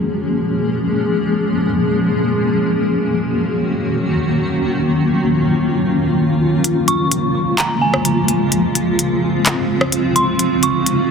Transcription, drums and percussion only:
6.64 closed hi-hat
6.88 closed hi-hat
7.12 closed hi-hat
7.58 clap, closed hi-hat
7.94 cross-stick
8.05 closed hi-hat
8.28 closed hi-hat
8.52 closed hi-hat
8.75 closed hi-hat
8.99 closed hi-hat
9.46 clap, closed hi-hat
9.81 cross-stick
9.92 closed hi-hat
10.16 closed hi-hat
10.39 closed hi-hat
10.63 closed hi-hat
10.86 closed hi-hat

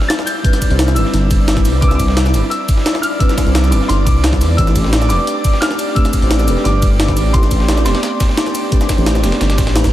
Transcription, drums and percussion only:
0.02 snare
0.10 snare, closed hi-hat
0.19 snare
0.27 closed hi-hat, ride, cabasa
0.44 kick, closed hi-hat
0.53 snare, closed hi-hat, cabasa
0.62 kick, closed hi-hat, ride, cabasa
0.70 closed hi-hat
0.79 snare, closed hi-hat
0.88 snare, cabasa
0.96 closed hi-hat, ride, cabasa
1.05 snare
1.13 snare, closed hi-hat
1.31 kick, closed hi-hat, ride, cabasa
1.48 snare, closed hi-hat
1.57 kick, snare, closed hi-hat
1.65 closed hi-hat, open hi-hat, ride, cabasa
1.82 kick, closed hi-hat
1.91 snare, cabasa
2.00 kick, closed hi-hat, ride, cabasa
2.08 snare
2.17 snare, closed hi-hat
2.26 snare, cabasa
2.34 snare, closed hi-hat, ride, cabasa
2.51 closed hi-hat
2.69 kick, closed hi-hat, ride, cabasa
2.77 snare
2.86 snare, closed hi-hat
2.95 snare
3.03 closed hi-hat, ride, cabasa
3.20 kick, closed hi-hat
3.29 snare, closed hi-hat, cabasa
3.38 kick, snare, closed hi-hat, ride, cabasa
3.47 closed hi-hat
3.55 snare, closed hi-hat
3.64 snare, cabasa
3.72 closed hi-hat, ride, cabasa
3.81 snare
3.89 snare, closed hi-hat
4.07 kick, closed hi-hat, ride, cabasa
4.24 snare, closed hi-hat
4.33 kick, snare, closed hi-hat
4.41 closed hi-hat, open hi-hat, ride, cabasa
4.58 kick, closed hi-hat
4.67 snare, cabasa
4.76 kick, closed hi-hat, ride, cabasa
4.84 snare
4.93 snare, closed hi-hat
5.02 snare, cabasa
5.10 snare, closed hi-hat, ride, cabasa
5.27 closed hi-hat
5.45 kick, closed hi-hat, ride, cabasa
5.53 snare
5.62 snare, closed hi-hat
5.71 snare
5.79 closed hi-hat, ride, cabasa
5.96 kick, closed hi-hat
6.05 snare, closed hi-hat, cabasa
6.13 kick, closed hi-hat, ride, cabasa
6.22 closed hi-hat
6.31 snare, closed hi-hat
6.39 snare, cabasa
6.48 closed hi-hat, ride, cabasa
6.57 snare
6.65 snare, closed hi-hat
6.82 kick, closed hi-hat, ride, cabasa
7.00 snare, closed hi-hat
7.08 kick, snare, closed hi-hat
7.17 closed hi-hat, open hi-hat, ride, cabasa
7.34 kick, closed hi-hat
7.43 snare, cabasa
7.51 kick, closed hi-hat, ride, cabasa
7.60 snare
7.68 snare, closed hi-hat
7.77 snare, cabasa
7.86 snare, closed hi-hat, ride, cabasa
7.95 snare, closed hi-hat
8.03 snare, closed hi-hat
8.20 kick, snare, closed hi-hat, ride, cabasa
8.29 snare
8.37 snare, closed hi-hat
8.46 snare
8.55 closed hi-hat, ride, cabasa
8.72 kick, closed hi-hat
8.81 snare, closed hi-hat, cabasa
8.89 kick, snare, closed hi-hat, ride, cabasa
8.98 closed hi-hat
9.06 snare, closed hi-hat
9.15 snare, cabasa
9.24 snare, closed hi-hat, ride, cabasa
9.32 snare, closed hi-hat
9.41 snare, closed hi-hat
9.50 snare, closed hi-hat, cabasa
9.58 kick, snare, closed hi-hat, ride, cabasa
9.67 snare, closed hi-hat
9.76 snare, closed hi-hat
9.84 kick, snare, cabasa

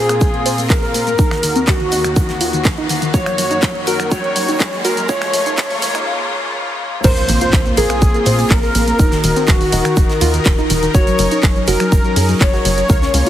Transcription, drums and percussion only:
0.09 finger snap, closed hi-hat, shaker
0.21 kick, closed hi-hat, shaker
0.34 closed hi-hat
0.46 open hi-hat, shaker
0.58 closed hi-hat, shaker
0.69 kick, snare, clap, closed hi-hat, shaker
0.83 snare, closed hi-hat
0.94 open hi-hat, shaker
1.07 closed hi-hat, shaker
1.19 kick, closed hi-hat, shaker
1.31 finger snap, snare, closed hi-hat
1.43 open hi-hat, shaker
1.56 closed hi-hat, shaker
1.67 kick, snare, clap, closed hi-hat, shaker
1.80 closed hi-hat
1.92 open hi-hat, shaker
2.04 finger snap, closed hi-hat, shaker
2.16 kick, closed hi-hat, shaker
2.29 snare, closed hi-hat
2.41 open hi-hat, shaker
2.53 closed hi-hat, shaker
2.65 kick, snare, clap, closed hi-hat, shaker
2.78 closed hi-hat
2.89 open hi-hat, shaker
3.02 closed hi-hat, shaker
3.14 kick, closed hi-hat, shaker
3.26 finger snap, closed hi-hat
3.38 open hi-hat, shaker
3.51 closed hi-hat, shaker
3.62 kick, snare, clap, closed hi-hat, shaker
3.75 closed hi-hat
3.87 open hi-hat, shaker
4.00 finger snap, closed hi-hat, shaker
4.11 kick, closed hi-hat, shaker
4.24 closed hi-hat
4.36 open hi-hat, shaker
4.48 closed hi-hat, shaker
4.60 kick, snare, clap, closed hi-hat, shaker
4.72 snare, closed hi-hat
4.85 open hi-hat, shaker
4.97 closed hi-hat, shaker
5.09 kick, closed hi-hat, shaker
5.21 finger snap, snare, closed hi-hat
5.33 open hi-hat, shaker
5.46 closed hi-hat, shaker
5.58 kick, snare, clap, closed hi-hat, shaker
5.70 open hi-hat
5.82 open hi-hat, shaker
5.95 finger snap, closed hi-hat, shaker
7.04 kick, closed hi-hat, crash, shaker
7.16 closed hi-hat, shaker
7.28 open hi-hat, ride, shaker
7.41 closed hi-hat, shaker
7.53 kick, snare, clap, closed hi-hat, shaker
7.66 closed hi-hat, shaker
7.77 open hi-hat, ride, shaker
7.90 finger snap, closed hi-hat, shaker
8.02 kick, closed hi-hat, shaker
8.14 closed hi-hat, shaker
8.26 open hi-hat, ride, shaker
8.39 closed hi-hat, shaker
8.50 kick, snare, clap, closed hi-hat, shaker
8.63 snare, closed hi-hat, shaker
8.75 open hi-hat, ride, shaker
8.88 closed hi-hat, shaker
8.99 kick, closed hi-hat, shaker
9.11 snare, closed hi-hat, shaker
9.24 open hi-hat, ride, shaker
9.36 closed hi-hat, shaker
9.47 kick, snare, clap, closed hi-hat, shaker
9.61 open hi-hat, shaker
9.72 open hi-hat, ride, shaker
9.85 finger snap, closed hi-hat, shaker
9.96 kick, closed hi-hat, shaker
10.09 snare, closed hi-hat, shaker
10.21 open hi-hat, ride, shaker
10.34 closed hi-hat, shaker
10.45 kick, snare, clap, closed hi-hat, shaker
10.58 closed hi-hat, shaker
10.70 open hi-hat, ride, shaker
10.83 closed hi-hat, shaker
10.94 kick, closed hi-hat, shaker
11.07 closed hi-hat, shaker
11.18 open hi-hat, ride, shaker
11.31 closed hi-hat, shaker
11.43 kick, snare, clap, closed hi-hat, shaker
11.56 closed hi-hat, shaker
11.67 open hi-hat, ride, shaker
11.80 finger snap, closed hi-hat, shaker
11.92 kick, closed hi-hat, shaker
12.04 closed hi-hat, shaker
12.16 open hi-hat, ride, shaker
12.29 closed hi-hat, shaker
12.41 kick, snare, clap, closed hi-hat, shaker
12.53 snare, closed hi-hat, shaker
12.65 open hi-hat, ride, shaker
12.78 closed hi-hat, shaker
12.89 kick, closed hi-hat, shaker
13.02 snare, closed hi-hat, shaker
13.14 open hi-hat, ride, shaker

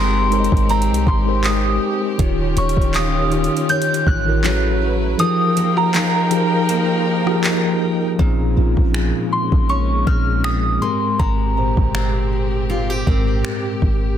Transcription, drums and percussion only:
0.32 closed hi-hat
0.44 closed hi-hat
0.52 kick
0.57 closed hi-hat
0.69 closed hi-hat
0.82 closed hi-hat
0.94 closed hi-hat
1.07 kick
1.44 clap, closed hi-hat
2.19 kick, closed hi-hat
2.57 closed hi-hat
2.69 closed hi-hat
2.77 kick
2.82 closed hi-hat
2.94 clap, closed hi-hat
3.32 closed hi-hat
3.44 closed hi-hat
3.57 closed hi-hat
3.69 closed hi-hat
3.82 closed hi-hat
3.94 closed hi-hat
4.07 kick
4.44 clap, closed hi-hat
5.19 closed hi-hat
5.57 closed hi-hat
5.77 cross-stick
5.94 clap, closed hi-hat
6.31 closed hi-hat
6.69 closed hi-hat
7.27 cross-stick
7.44 clap, closed hi-hat
8.19 kick
8.77 kick
8.94 finger snap
9.52 kick
10.07 kick
10.44 finger snap
11.19 kick
11.77 kick
11.95 finger snap
13.07 kick
13.45 finger snap
13.82 kick

